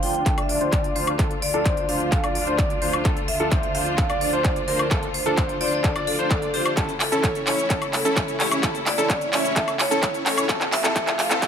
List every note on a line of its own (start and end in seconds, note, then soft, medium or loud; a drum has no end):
0.00 6.73 D2 medium
0.00 6.73 D3 medium
0.00 10.45 A3 medium
0.00 0.23 D4 medium
0.00 6.73 F4 medium
0.00 0.23 F4 medium
0.00 0.23 C5 medium
0.00 0.43 G5 loud
0.00 open hi-hat medium
0.14 closed hi-hat soft
0.26 0.36 D4 medium
0.26 0.36 A4 medium
0.26 kick loud
0.26 clap medium
0.26 closed hi-hat loud
0.38 0.58 D4 loud
0.38 0.58 F4 medium
0.38 0.58 D5 loud
0.38 closed hi-hat soft
0.38 high woodblock medium
0.42 0.49 E5 medium
0.49 0.97 D5 loud
0.49 open hi-hat loud
0.61 0.71 D4 medium
0.61 0.71 F4 medium
0.61 0.71 C5 loud
0.61 closed hi-hat soft
0.72 0.93 D4 medium
0.72 0.93 F4 medium
0.72 0.93 D5 medium
0.72 kick loud
0.72 clap medium
0.72 closed hi-hat loud
0.84 closed hi-hat soft
0.96 1.15 D4 medium
0.96 1.15 F4 medium
0.96 1.17 C5 medium
0.96 1.15 C5 medium
0.96 1.16 C5 medium
0.96 open hi-hat medium
1.07 closed hi-hat soft
1.07 high woodblock medium
1.19 1.36 A4 loud
1.19 kick loud
1.19 clap medium
1.19 closed hi-hat medium
1.31 closed hi-hat soft
1.42 1.85 D5 loud
1.42 open hi-hat loud
1.54 1.64 D4 loud
1.54 1.64 F4 loud
1.54 1.64 A4 loud
1.54 closed hi-hat soft
1.65 1.85 D4 medium
1.65 1.85 F4 medium
1.65 1.85 C5 loud
1.65 kick loud
1.65 clap medium
1.65 closed hi-hat loud
1.77 closed hi-hat soft
1.89 2.09 D4 medium
1.89 2.09 F4 medium
1.89 2.09 C5 medium
1.89 2.37 F5 loud
1.89 open hi-hat medium
2.00 closed hi-hat soft
2.12 2.22 D4 medium
2.12 2.22 F4 medium
2.12 2.22 A4 medium
2.12 kick loud
2.12 clap medium
2.12 closed hi-hat medium
2.24 2.44 D4 loud
2.24 2.44 F4 medium
2.24 2.44 D5 loud
2.24 closed hi-hat soft
2.24 high woodblock medium
2.35 2.83 D5 loud
2.35 open hi-hat loud
2.47 2.57 D4 medium
2.47 2.57 F4 medium
2.47 2.57 C5 loud
2.47 closed hi-hat soft
2.58 kick loud
2.58 clap medium
2.58 closed hi-hat loud
2.70 closed hi-hat soft
2.82 3.02 D4 medium
2.82 3.02 F4 medium
2.82 3.02 C5 medium
2.82 2.92 C5 medium
2.82 open hi-hat medium
2.93 closed hi-hat soft
2.93 high woodblock medium
3.05 3.22 D4 loud
3.05 3.22 A4 loud
3.05 kick loud
3.05 clap medium
3.05 closed hi-hat medium
3.17 closed hi-hat soft
3.28 3.76 E5 loud
3.28 open hi-hat loud
3.40 3.50 D4 loud
3.40 3.50 F4 medium
3.40 3.50 A4 loud
3.40 closed hi-hat soft
3.51 3.71 D4 loud
3.51 3.71 F4 medium
3.51 3.71 C5 loud
3.51 kick loud
3.51 clap medium
3.51 closed hi-hat medium
3.63 closed hi-hat soft
3.75 3.95 D4 medium
3.75 3.95 F4 medium
3.75 3.95 C5 medium
3.75 4.23 F5 loud
3.75 open hi-hat medium
3.86 closed hi-hat soft
3.98 4.08 A4 medium
3.98 kick loud
3.98 clap medium
3.98 closed hi-hat medium
4.10 4.30 D4 loud
4.10 4.30 F4 medium
4.10 4.30 D5 loud
4.10 closed hi-hat soft
4.10 high woodblock medium
4.21 4.69 C5 loud
4.21 open hi-hat loud
4.33 4.43 D4 medium
4.33 4.43 F4 medium
4.33 4.43 C5 loud
4.33 closed hi-hat soft
4.44 kick loud
4.44 clap medium
4.44 closed hi-hat loud
4.56 closed hi-hat soft
4.68 4.88 D4 medium
4.68 4.88 F4 medium
4.68 4.89 A#4 medium
4.68 4.88 C5 medium
4.68 open hi-hat loud
4.79 closed hi-hat soft
4.79 high woodblock medium
4.91 5.08 D4 medium
4.91 5.08 F4 medium
4.91 5.08 A4 loud
4.91 kick loud
4.91 clap medium
4.91 closed hi-hat medium
5.03 closed hi-hat soft
5.14 5.58 C5 loud
5.14 open hi-hat loud
5.26 5.36 D4 loud
5.26 5.36 F4 medium
5.26 5.36 A4 loud
5.26 closed hi-hat soft
5.37 5.57 C5 medium
5.37 kick loud
5.37 clap medium
5.37 closed hi-hat medium
5.49 closed hi-hat soft
5.61 5.81 D4 medium
5.61 5.81 F4 medium
5.61 5.81 C5 medium
5.61 5.68 D5 loud
5.61 open hi-hat medium
5.68 5.75 C5 medium
5.72 6.08 D5 loud
5.72 closed hi-hat soft
5.84 5.94 D4 medium
5.84 5.94 F4 medium
5.84 5.94 A4 medium
5.84 kick loud
5.84 clap medium
5.84 closed hi-hat medium
5.96 6.16 D4 medium
5.96 6.16 F4 medium
5.96 6.16 D5 loud
5.96 closed hi-hat soft
5.96 high woodblock medium
6.07 6.55 A4 loud
6.07 open hi-hat loud
6.19 6.29 D4 medium
6.19 6.29 F4 medium
6.19 6.29 C5 loud
6.19 closed hi-hat soft
6.30 6.51 D4 medium
6.30 6.51 D5 medium
6.30 kick loud
6.30 clap medium
6.30 closed hi-hat medium
6.42 closed hi-hat soft
6.54 6.74 D4 medium
6.54 6.74 F4 medium
6.54 6.75 G4 medium
6.54 6.74 C5 medium
6.54 open hi-hat medium
6.65 closed hi-hat soft
6.65 high woodblock medium
6.77 10.46 C#2 medium
6.77 10.45 C#3 medium
6.77 6.94 C#4 medium
6.77 6.94 E4 medium
6.77 10.46 E4 medium
6.77 6.94 A4 medium
6.77 6.94 A4 loud
6.77 kick loud
6.77 clap medium
6.77 closed hi-hat medium
6.77 riser medium
6.77 shaker medium
6.89 closed hi-hat soft
6.89 shaker soft
7.00 7.48 A4 loud
7.00 clap medium
7.00 open hi-hat loud
7.12 7.22 C#4 loud
7.12 7.22 E4 medium
7.12 7.22 A4 medium
7.12 7.22 A4 loud
7.12 closed hi-hat soft
7.12 shaker medium
7.24 7.43 C#4 medium
7.24 7.43 C#5 medium
7.24 7.43 C#5 loud
7.24 kick loud
7.24 clap medium
7.24 closed hi-hat medium
7.24 shaker medium
7.35 closed hi-hat soft
7.35 shaker soft
7.47 7.67 C#4 medium
7.47 7.67 E4 medium
7.47 7.95 C#5 loud
7.47 7.67 C#5 medium
7.47 clap medium
7.47 open hi-hat medium
7.58 closed hi-hat soft
7.58 shaker medium
7.70 7.87 C#4 medium
7.70 7.87 E4 medium
7.70 7.87 A4 medium
7.70 7.87 A4 loud
7.70 kick loud
7.70 clap medium
7.70 closed hi-hat medium
7.70 shaker medium
7.82 closed hi-hat soft
7.82 high woodblock medium
7.82 shaker soft
7.93 8.41 A4 loud
7.93 clap medium
7.93 open hi-hat loud
8.05 8.15 C#4 medium
8.05 8.15 E4 medium
8.05 8.15 A4 loud
8.05 closed hi-hat soft
8.05 shaker medium
8.17 8.36 E4 medium
8.17 8.36 C#5 medium
8.17 kick loud
8.17 clap medium
8.17 closed hi-hat medium
8.17 shaker medium
8.28 closed hi-hat soft
8.28 shaker soft
8.40 8.60 C#4 medium
8.40 8.60 E4 medium
8.40 8.62 G4 medium
8.40 8.60 C#5 medium
8.40 clap medium
8.40 open hi-hat medium
8.51 closed hi-hat soft
8.51 high woodblock medium
8.51 shaker medium
8.63 8.80 C#4 medium
8.63 8.80 A4 loud
8.63 kick loud
8.63 clap medium
8.63 closed hi-hat medium
8.63 shaker medium
8.75 closed hi-hat soft
8.75 shaker soft
8.86 9.34 D5 loud
8.86 clap medium
8.86 open hi-hat loud
8.98 9.08 C#4 medium
8.98 9.08 E4 medium
8.98 9.08 A4 loud
8.98 closed hi-hat soft
8.98 shaker medium
9.10 9.29 C#4 medium
9.10 9.29 C#5 medium
9.10 kick loud
9.10 clap medium
9.10 closed hi-hat medium
9.10 shaker medium
9.21 closed hi-hat soft
9.21 shaker soft
9.33 9.53 C#4 medium
9.33 9.53 E4 medium
9.33 9.53 C#5 medium
9.33 9.81 E5 loud
9.33 clap medium
9.33 open hi-hat medium
9.45 closed hi-hat soft
9.45 shaker medium
9.56 9.73 C#4 medium
9.56 9.73 E4 medium
9.56 9.73 A4 loud
9.56 kick loud
9.56 clap medium
9.56 closed hi-hat medium
9.56 shaker medium
9.68 closed hi-hat soft
9.68 high woodblock medium
9.68 shaker soft
9.79 10.23 C#5 loud
9.79 clap medium
9.79 open hi-hat loud
9.91 10.01 C#4 loud
9.91 10.01 E4 medium
9.91 10.01 A4 loud
9.91 closed hi-hat soft
9.91 shaker medium
10.03 10.22 E4 medium
10.03 10.22 C#5 medium
10.03 kick loud
10.03 clap medium
10.03 closed hi-hat loud
10.03 shaker medium
10.14 closed hi-hat soft
10.14 shaker soft
10.26 10.46 C#4 medium
10.26 10.46 E4 medium
10.26 10.48 A4 medium
10.26 10.46 C#5 medium
10.26 clap loud
10.26 open hi-hat medium
10.38 closed hi-hat soft
10.38 high woodblock medium
10.38 shaker medium
10.49 11.47 F2 medium
10.49 11.47 C3 medium
10.49 11.47 A3 medium
10.49 11.47 F4 medium
10.49 10.66 A4 loud
10.49 kick loud
10.49 clap medium
10.49 closed hi-hat medium
10.49 shaker medium
10.61 clap medium
10.61 closed hi-hat soft
10.61 shaker soft
10.72 11.20 E5 loud
10.72 clap medium
10.72 open hi-hat loud
10.84 10.94 C4 loud
10.84 10.94 E4 medium
10.84 10.94 A4 loud
10.84 clap medium
10.84 closed hi-hat soft
10.84 shaker medium
10.96 11.12 A4 loud
10.96 kick loud
10.96 clap loud
10.96 closed hi-hat loud
10.96 shaker medium
11.07 clap medium
11.07 closed hi-hat soft
11.07 shaker soft
11.19 11.47 F5 loud
11.19 clap loud
11.19 open hi-hat medium
11.30 11.40 C4 loud
11.30 11.40 E4 medium
11.30 11.40 A4 loud
11.30 clap medium
11.30 closed hi-hat soft
11.30 shaker medium
11.42 11.47 A4 loud
11.42 kick loud
11.42 clap loud
11.42 closed hi-hat loud
11.42 shaker medium